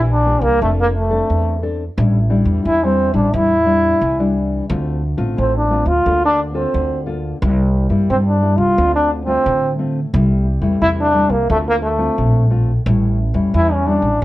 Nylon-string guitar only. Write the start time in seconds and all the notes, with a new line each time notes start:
Already playing: E3 A#3 D4 G4
0.26 A#3 D4 G4
0.61 F3 C4 D4 A4
1.09 C4 D4 A4
1.62 C4 D4 A4
1.97 A2 G3 D4 E4
2.30 G3 D4 E4
2.65 E3
2.83 G3 D4 E4
3.13 G3 D4 E4
3.33 A2 G3 D4 E4
3.65 G3 D4 E4
4.01 E3
4.19 G3 D4 E4
4.70 D3 A3 C4 F4
5.17 A3 C4 F4
5.37 A2
5.70 A3 C4 F4
6.06 D3 A#3 F4 A4
6.54 A#3 F4 A4
6.74 D3
7.06 A#3 F4 A4
7.42 C3 G3 A#3 E4
7.90 G3 A#3 E4
8.10 G2
8.42 G3 A#3 E4
8.78 D3 A3 C4 F4
9.26 A3 C4 F4
9.46 A2
9.79 A3 C4 F4
10.13 C3 G3 A3 E4
10.62 G3 A3 E4
10.81 C3
11.14 G3 A3 E4
11.50 D3 A3 C4 F4
11.98 A3 C4 F4
12.18 A2
12.50 A3 C4 F4
12.86 A2 G3 C#4 E4
13.34 G3 C#4 E4
13.54 E3
13.86 G3 C#4 E4